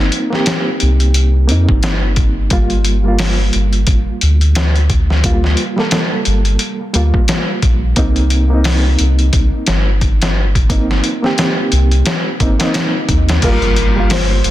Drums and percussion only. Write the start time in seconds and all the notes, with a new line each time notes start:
0.12 closed hi-hat
0.33 snare
0.46 snare, closed hi-hat
0.80 closed hi-hat
1.00 closed hi-hat
1.14 closed hi-hat
1.49 closed hi-hat
1.69 kick
1.83 snare, closed hi-hat
2.16 kick, closed hi-hat
2.50 kick, closed hi-hat
2.70 closed hi-hat
2.85 closed hi-hat
3.19 snare, open hi-hat
3.53 closed hi-hat
3.73 closed hi-hat
3.87 kick, closed hi-hat
4.21 closed hi-hat
4.41 closed hi-hat
4.55 snare, closed hi-hat
4.76 closed hi-hat
4.90 kick, closed hi-hat
5.10 snare
5.24 kick, closed hi-hat
5.44 snare
5.57 closed hi-hat
5.78 snare
5.91 snare, closed hi-hat
6.25 closed hi-hat
6.45 closed hi-hat
6.59 closed hi-hat
6.94 closed hi-hat
7.14 kick
7.28 snare, closed hi-hat
7.62 kick, closed hi-hat
7.96 kick, closed hi-hat
8.16 closed hi-hat
8.30 closed hi-hat
8.64 snare, open hi-hat
8.99 closed hi-hat
9.19 closed hi-hat
9.33 kick, closed hi-hat
9.67 snare, closed hi-hat
10.01 kick, closed hi-hat
10.22 snare, closed hi-hat
10.55 kick, closed hi-hat
10.70 kick, closed hi-hat
10.91 snare
11.04 closed hi-hat
11.24 snare
11.38 snare, closed hi-hat
11.72 closed hi-hat
11.91 closed hi-hat
12.06 snare, closed hi-hat
12.40 kick, closed hi-hat
12.60 snare, closed hi-hat
12.74 snare, closed hi-hat
13.09 kick, closed hi-hat
13.29 snare, closed hi-hat
13.42 kick, closed hi-hat, crash
13.62 closed hi-hat
13.76 closed hi-hat
14.10 snare, open hi-hat
14.44 closed hi-hat